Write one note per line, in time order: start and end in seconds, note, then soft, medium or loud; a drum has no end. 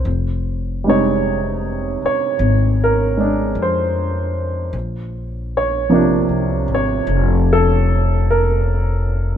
0.05 1.98 F1 medium
0.84 4.75 C3 soft
0.84 4.73 G3 soft
0.84 3.16 G#3 soft
0.89 4.76 D#4 soft
0.89 2.00 C#5 medium
2.02 2.77 C#5 medium
2.02 muted upright bass stroke soft
2.39 3.52 G#1 medium
2.84 3.55 A#4 medium
3.17 4.73 G#3 soft
3.17 4.74 D4 soft
3.55 4.69 F2 medium
3.62 4.72 C5 medium
4.73 6.25 A#1 medium
5.57 6.67 C#5 medium
5.90 9.37 C3 soft
5.90 9.34 F3 medium
5.90 9.37 A#3 soft
5.94 9.37 D4 medium
6.29 6.65 C2 medium
6.68 7.04 G#1 medium
6.75 7.45 C#5 medium
7.07 9.37 F1 medium
7.53 8.24 A4 medium
8.30 9.37 A#4 medium